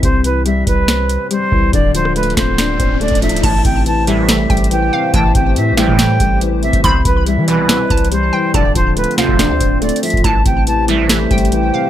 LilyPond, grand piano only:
\new Staff \with { instrumentName = "Grand piano" } { \clef bass \time 4/4 \key a \minor \tempo 4 = 141 c8 e8 g4 c'4 g8 e8 | d8 f8 a8 c'8 d'8 c'8 a8 f8 | a,8 c8 e8 g8 a8 g8 e8 c8 | a,8 c8 e8 g8 a8 g8 e8 c8 |
c8 e8 g4 c'4 g8 e8 | d8 f8 a8 c'8 d'8 c'8 a8 f8 | a,8 c8 e8 g8 a8 g8 e8 c8 | }